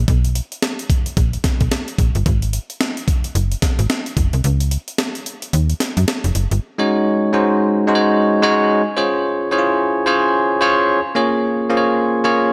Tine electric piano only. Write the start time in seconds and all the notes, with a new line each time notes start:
6.78 G#3 C#4 D#4 F#4 C#5
7.33 G#3 C#4 D#4 F#4 C5
7.87 G#3 C#4 D#4 F#4 C5
7.95 C#5
8.42 G#3 C#4 D#4 F#4 C#5
8.97 C#4 F4 G#4 C5 C#5
9.51 C#4 E4 G#4 C5 C#5
9.58 F4
10.06 C#4 F4 G#4 C5 C#5
10.61 C#4 F4 G#4 C5 C#5
11.15 A#3 C#4 F4 G#4 C#5
11.70 A#3 C#4 F4 G#4 C5
11.77 C#5
12.24 A#3 C#4 F4 G#4 C#5